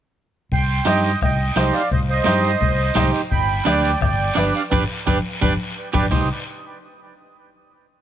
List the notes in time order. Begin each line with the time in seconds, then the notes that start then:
0.52 C2 G5 C6, bombo low, long guiro
0.85 G2 D#4 G4 C5 D#5 G5, bombo rim, high conga, short guiro
1.04 short guiro
1.21 C2 D#5 G5, bombo low, bombo rim, low conga, long guiro
1.56 C2 D#4 G4 C5 D#5, bombo rim, high conga, short guiro
1.73 D5 F5, short guiro
1.91 C2 C5 D#5, bombo low, low conga, long guiro
2.10 C5 D#5
2.25 G2 D#4 G4 C5, bombo rim, high conga, short guiro
2.45 short guiro
2.61 C2, bombo low, low conga, long guiro
2.95 C2 D#4 G4 C5, bombo low, bombo rim, high conga, low conga, short guiro
3.14 short guiro
3.31 G1 G5 B5, bombo low, long guiro
3.65 D2 D4 G4 B4 D5 G5, bombo rim, high conga, short guiro
3.84 high conga, short guiro
4.01 G1 D5 G5, bombo low, bombo rim, low conga, long guiro
4.35 G1 D4 G4 B4 D5, bombo rim, high conga, short guiro
4.55 D5 F5, short guiro
4.71 G1 D4 G4 B4 D5 G5, bombo low, high conga, long guiro
5.06 G1 D4 G4 B4 D5 G5, bombo low, high conga, long guiro
5.41 G1 D4 G4 B4 D5 G5, bombo low, high conga, long guiro
5.93 G1 D4 G4 B4 D5 G5, bombo low, high conga, long guiro
6.11 C2 D#4 G4 C5 D#6, bombo low, low conga, long guiro